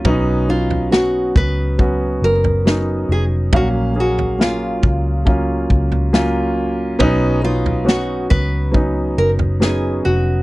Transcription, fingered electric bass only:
\new Staff \with { instrumentName = "Fingered electric bass" } { \clef bass \time 4/4 \key b \lydian \tempo 4 = 69 b,,4. cis,4 fis,,4 eis,,8 | ais,,4. cis,4 cis,4. | b,,4. cis,4 fis,,4 eis,,8 | }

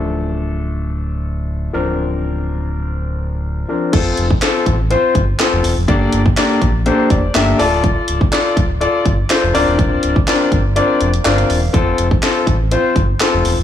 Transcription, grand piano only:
\new Staff \with { instrumentName = "Grand piano" } { \time 4/4 \key f \major \tempo 4 = 123 << { r1 | r1 | r1 | r2 r8 d''8 g''8 a''8 |
r1 | r2. f''4 | r1 | } \\ { <f a d' a'>2.~ <f a d' a'>8 <f c' d' bes'>8~ | <f c' d' bes'>2.~ <f c' d' bes'>8 <f c' d' bes'>8 | <c' f' a'>8 r8 <c' f' a'>8 r8 <c' f' c''>8 r8 <c' f' a'>8 r8 | <bes d' g' a' d''>8 r8 <bes d' g' a' d''>8 r8 <bes d' g' a' c''>8 r8 <bes d' g' a' e''>8 <f' a' d''>8~ |
<f' a' d''>8 r8 <f' a' d''>8 r8 <f' a' d''>8 r8 <f' a' c''>8 <c' d' f' bes' d''>8~ | <c' d' f' bes' d''>8 r8 <c' d' f' bes' d''>8 r8 <c' d' f' bes' d''>8 r8 <c' d' f' bes' d''>8 r8 | <c' f' a'>8 r8 <c' f' a'>8 r8 <c' f' c''>8 r8 <c' f' a'>8 r8 | } >> }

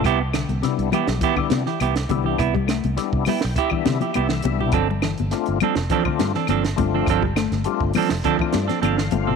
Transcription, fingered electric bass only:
\new Staff \with { instrumentName = "Fingered electric bass" } { \clef bass \time 4/4 \key g \mixolydian \tempo 4 = 102 c,8. c,16 r16 c,16 r16 b,,16 r8 c16 r16 c,8 c,8 | c,8. c,16 r16 c,16 r16 b,,16 r8 c16 r16 c,8 c,8 | g,,8. g,,16 r16 g,,16 r16 f,,16 r8 g,16 r16 g,,8 g,,8 | g,,8. g,,16 r16 g,,16 r16 f,,16 r8 g,16 r16 g,,8 g,,8 | }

